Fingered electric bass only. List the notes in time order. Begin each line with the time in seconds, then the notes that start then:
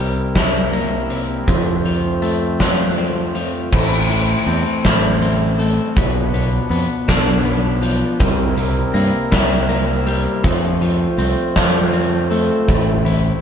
Already playing: C2
1.48 F2
3.72 A1
4.46 E2
4.84 A1
5.97 B1
6.70 F2
7.08 B1
8.20 C2
8.94 G2
9.32 C2
10.44 F2
11.18 C2
11.56 F2
12.68 A1